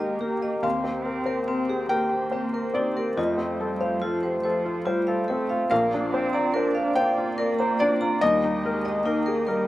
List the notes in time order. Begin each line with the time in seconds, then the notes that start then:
Already playing: D#2 G#3 A#3 G4 G#4 A#4 D#5
0.00 G4 D#5
0.19 A#3 G4
0.42 G4 D#5
0.62 D#2 A#3 C4 C5 F5
0.84 C4
1.03 C4 A#4
1.26 A#4 C5
1.46 C4 A#4
1.69 G4 G#4
1.87 A#3 G4 A#4 G5
2.09 G4
2.32 C4 C5
2.53 A#4
2.74 C4 D#4 D5
2.96 G4 A#4
3.15 F2 A3 F4 D#5
3.38 C4
3.57 G3 A4
3.81 C5 F5
4.00 F3 F4 A4
4.23 G4 C5
4.42 F3 A4 C5
4.66 F4
4.84 G3 F4 C5
5.07 A4 F5
5.27 A3 C4 A4
5.50 F4 F5
5.70 A#1 A#3 C4 A#4 D5 F5
5.94 D4
6.12 C4 C5
6.33 D5 A#5
6.53 D4 A#4 C5
6.75 A#4 F5
6.94 A#3 C5 F5 G5
7.18 F4
7.38 A#4 D5
7.59 C5 A#5
7.79 D4 D5
8.01 F4 A#5
8.20 D#2 G3 A#3 D#4 G4 D#5
8.44 D#4
8.63 G#3 A#4
8.85 D#5
9.03 A#3 D#4 A#4
9.26 G#4 A#4
9.46 G3 A#4